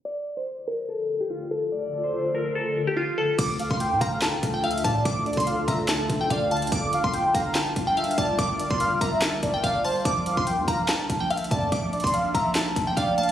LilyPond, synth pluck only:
\new Staff \with { instrumentName = "Synth pluck" } { \time 4/4 \key d \minor \tempo 4 = 144 d''8. c''8. bes'8 a'8. g'16 f'8 a'8 | d''8. c''8. bes'8 a'8. g'16 f'8 a'8 | d'''8. c'''8. bes''8 a''8. g''16 f''8 a''8 | d'''8. c'''8. bes''8 a''8. g''16 f''8 a''8 |
d'''8. c'''8. bes''8 a''8. g''16 f''8 a''8 | d'''8. c'''8. bes''8 a''8. g''16 f''8 a''8 | d'''8. c'''8. bes''8 a''8. g''16 f''8 a''8 | d'''8. c'''8. bes''8 a''8. g''16 f''8 a''8 | }